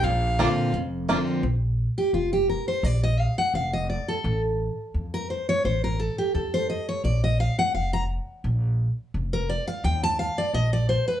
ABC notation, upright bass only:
X:1
M:4/4
L:1/8
Q:"Swing" 1/4=171
K:Bb
V:1 name="Upright bass" clef=bass
B,,,4 F,,,4 | B,,,4 F,,,4 | B,,,4 F,,,4 | A,,,4 F,,4 |
A,,,4 F,,4 | B,,,4 F,,,4 | B,,,4 F,,,4 | E,,4 B,,,4 |]